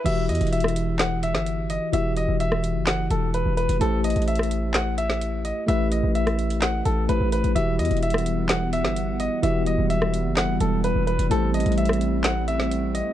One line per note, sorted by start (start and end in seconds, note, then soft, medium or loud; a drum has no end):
0.05 0.31 E1 loud
0.05 1.89 E3 medium
0.05 1.89 E4 medium
0.05 1.90 F#4 medium
0.05 1.90 G4 medium
0.05 0.23 E5 loud
0.05 closed hi-hat medium
0.05 crash loud
0.29 0.40 E2 loud
0.29 0.47 D#5 medium
0.29 closed hi-hat medium
0.35 closed hi-hat medium
0.41 1.36 E1 loud
0.41 closed hi-hat medium
0.47 closed hi-hat soft
0.52 0.97 E5 medium
0.52 closed hi-hat medium
0.60 cross-stick medium
0.60 closed hi-hat medium
0.68 closed hi-hat medium
0.76 closed hi-hat medium
0.99 1.17 F#5 medium
0.99 snare loud
0.99 clap medium
0.99 closed hi-hat medium
1.23 1.67 E5 medium
1.23 closed hi-hat medium
1.35 1.79 G1 loud
1.35 snare medium
1.46 closed hi-hat medium
1.70 1.88 D#5 medium
1.70 closed hi-hat medium
1.92 2.27 E1 loud
1.92 3.76 E3 medium
1.92 3.77 E4 medium
1.92 3.77 F#4 medium
1.92 3.78 G4 medium
1.92 2.11 E5 medium
1.92 closed hi-hat medium
2.17 2.35 D#5 medium
2.17 closed hi-hat medium
2.28 2.77 E1 loud
2.40 2.84 E5 medium
2.40 closed hi-hat medium
2.52 cross-stick medium
2.64 closed hi-hat medium
2.75 3.09 F#1 loud
2.87 3.05 F#5 medium
2.87 snare loud
2.87 clap medium
2.87 closed hi-hat medium
3.10 3.44 E1 loud
3.10 3.28 A4 medium
3.10 closed hi-hat medium
3.34 3.52 B4 medium
3.34 closed hi-hat medium
3.46 3.68 E1 loud
3.57 3.75 B4 medium
3.57 closed hi-hat soft
3.69 3.80 E1 loud
3.69 closed hi-hat medium
3.79 4.15 A1 loud
3.79 5.64 A3 medium
3.79 5.64 E4 medium
3.79 5.65 G4 medium
3.79 3.99 A4 loud
3.79 5.65 C5 medium
3.79 closed hi-hat medium
4.04 4.22 D#5 medium
4.04 closed hi-hat medium
4.10 closed hi-hat medium
4.16 5.53 A1 loud
4.16 closed hi-hat medium
4.22 closed hi-hat soft
4.28 4.72 E5 medium
4.28 closed hi-hat medium
4.35 cross-stick medium
4.35 closed hi-hat medium
4.43 closed hi-hat medium
4.51 closed hi-hat medium
4.74 4.92 F#5 medium
4.74 snare loud
4.74 clap medium
4.74 closed hi-hat medium
4.98 5.42 E5 medium
4.98 closed hi-hat medium
5.10 snare medium
5.21 closed hi-hat medium
5.45 5.62 D#5 medium
5.45 closed hi-hat medium
5.67 6.02 A1 loud
5.67 7.05 A3 medium
5.67 7.06 E4 medium
5.67 7.06 G4 medium
5.67 7.07 B4 medium
5.67 5.86 E5 loud
5.67 closed hi-hat medium
5.92 6.10 D#5 medium
5.92 closed hi-hat medium
6.04 6.82 A1 loud
6.15 6.59 E5 medium
6.15 closed hi-hat medium
6.27 cross-stick medium
6.27 closed hi-hat soft
6.39 closed hi-hat soft
6.50 closed hi-hat medium
6.62 6.80 F#5 medium
6.62 snare loud
6.62 clap medium
6.62 closed hi-hat medium
6.85 7.08 A1 loud
6.85 7.03 A4 medium
6.85 closed hi-hat medium
7.08 7.20 A1 loud
7.08 7.55 A3 medium
7.08 7.54 E4 soft
7.08 7.56 G4 soft
7.08 7.27 B4 medium
7.08 7.56 C5 medium
7.08 closed hi-hat medium
7.21 7.43 A1 loud
7.32 7.50 B4 medium
7.32 closed hi-hat medium
7.44 7.55 A1 loud
7.44 closed hi-hat soft
7.55 7.81 E1 loud
7.55 9.39 E3 medium
7.55 11.27 E3 medium
7.55 13.13 G3 loud
7.55 11.27 B3 medium
7.55 9.39 E4 medium
7.55 9.40 F#4 medium
7.55 9.40 G4 medium
7.55 7.73 E5 loud
7.55 11.27 F#5 medium
7.55 closed hi-hat medium
7.79 7.90 E2 loud
7.79 7.97 D#5 medium
7.79 closed hi-hat medium
7.85 closed hi-hat medium
7.91 8.86 E1 loud
7.91 closed hi-hat medium
7.97 closed hi-hat soft
8.03 8.47 E5 medium
8.03 closed hi-hat medium
8.10 cross-stick loud
8.10 closed hi-hat medium
8.18 closed hi-hat medium
8.26 closed hi-hat medium
8.49 8.67 F#5 medium
8.49 snare loud
8.49 clap medium
8.49 closed hi-hat medium
8.73 9.17 E5 medium
8.73 closed hi-hat medium
8.85 9.29 G1 loud
8.85 snare medium
8.96 closed hi-hat medium
9.20 9.38 D#5 medium
9.20 closed hi-hat medium
9.42 9.77 E1 loud
9.42 11.26 E3 medium
9.42 11.27 E4 medium
9.42 11.27 F#4 medium
9.42 11.28 G4 medium
9.42 9.61 E5 medium
9.42 closed hi-hat medium
9.66 9.85 D#5 medium
9.66 closed hi-hat medium
9.78 10.27 E1 loud
9.90 10.34 E5 medium
9.90 closed hi-hat medium
10.02 cross-stick medium
10.14 closed hi-hat medium
10.25 10.59 F#1 loud
10.37 10.55 F#5 medium
10.37 snare loud
10.37 clap medium
10.37 closed hi-hat medium
10.60 10.94 E1 loud
10.60 10.78 A4 medium
10.60 closed hi-hat medium
10.84 11.02 B4 medium
10.84 closed hi-hat medium
10.95 11.18 E1 loud
11.07 11.25 B4 medium
11.07 closed hi-hat soft
11.19 11.30 E1 loud
11.19 closed hi-hat medium
11.30 11.64 A1 loud
11.30 13.13 A3 medium
11.30 13.13 C4 medium
11.30 13.13 E4 medium
11.30 13.13 G4 medium
11.30 11.49 A4 loud
11.30 13.13 C5 medium
11.30 closed hi-hat medium
11.54 11.72 D#5 medium
11.54 closed hi-hat medium
11.60 closed hi-hat medium
11.66 13.03 A1 loud
11.66 closed hi-hat medium
11.72 closed hi-hat soft
11.78 12.22 E5 medium
11.78 closed hi-hat medium
11.85 cross-stick medium
11.85 closed hi-hat medium
11.93 closed hi-hat medium
12.01 closed hi-hat medium
12.24 12.42 F#5 medium
12.24 snare loud
12.24 clap medium
12.24 closed hi-hat medium
12.48 12.92 E5 medium
12.48 closed hi-hat medium
12.60 snare medium
12.71 closed hi-hat medium
12.95 13.12 D#5 medium
12.95 closed hi-hat medium